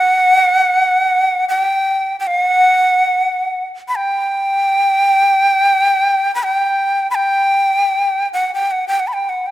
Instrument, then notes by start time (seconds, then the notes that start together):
shakuhachi
Already playing: F#5
1.49 G5
2.20 G5
2.27 F#5
3.88 B5
3.96 G5
6.35 B5
6.43 G5
7.11 B5
7.15 G5
8.33 F#5
8.54 G5
8.71 F#5
8.88 G5
9.00 F#5
9.07 B5
9.13 G5
9.29 F#5
9.46 G5